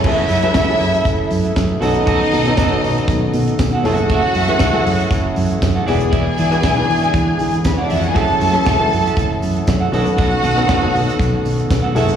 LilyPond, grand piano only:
\new Staff \with { instrumentName = "Grand piano" } { \time 4/4 \key fis \minor \tempo 4 = 118 <fis cis' e' gis' a'>8 r16 <fis cis' e' gis' b'>16 r16 <fis cis' e' gis' a'>4. r8. <b, b cis' dis' a'>8~ | <b, b cis' dis' a'>8 r16 <b, b cis' dis' a'>16 r16 <b, b cis' dis' a'>4. r8. <fis cis' e' gis' a'>8~ | <fis cis' e' gis' a'>8 r16 <fis cis' e' gis' b'>16 r16 <fis cis' e' gis' a'>4. r8. <e b d' fis' gis'>8~ | <e b d' fis' gis'>8 r16 <e b d' fis' gis'>16 r16 <e b d' fis' b'>4. r4 r16 |
<fis cis' e' gis' a'>8 r16 <fis cis' e' gis' a'>16 r16 <fis cis' e' fis' a'>4. r8. <b, b cis' dis' a'>8~ | <b, b cis' dis' a'>8 r16 <b, b cis' dis' a'>16 r16 <b, b cis' dis' a'>4. r8. <fis cis' e' gis' a'>8 | }